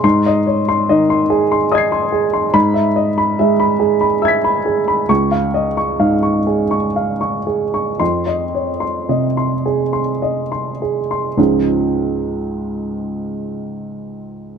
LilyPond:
<<
  \new Staff \with { instrumentName = "Upright piano" } { \time 6/8 \key des \major \tempo 4. = 42 << { c'''8 r4. <ees''' aes''' c''''>4 | b''8 r4. <e''' gis''' b'''>4 | des'''8 r2 r8 | c'''8 r2 r8 |
<des, aes, f aes des' f'>2. | } \\ { r16 ees''16 des''16 c'''16 ees''16 c'''16 aes'16 c'''16 ees''16 c'''16 aes'16 c'''16 | r16 e''16 ees''16 b''16 e''16 b''16 gis'16 b''16 e''16 b''16 gis'16 b''16 | r16 f''16 ees''16 des'''16 f''16 des'''16 aes'16 des'''16 f''16 des'''16 aes'16 des'''16 | r16 ees''16 des''16 c'''16 ees''16 c'''16 aes'16 c'''16 ees''16 c'''16 aes'16 c'''16 |
r2. | } >> }
  \new Staff \with { instrumentName = "Upright piano" } { \clef bass \time 6/8 \key des \major aes,4 ees4 r4 | gis,4 gis4 r4 | des,4 aes,4 r4 | f,4 c4 r4 |
r2. | }
>>